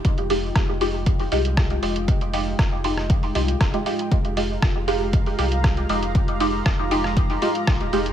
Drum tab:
HH |xxo-x-o-xooxxxox|xxo-x-o-xooxxxox|xxo-x-o-xooxxxox|xxo-x-o-xooxxxox|
SD |----r-------r---|----r--r----r---|----r-------r---|----r--r----r---|
BD |o---o---o---o---|o---o---o---o---|o---o---o---o---|o---o---o---o---|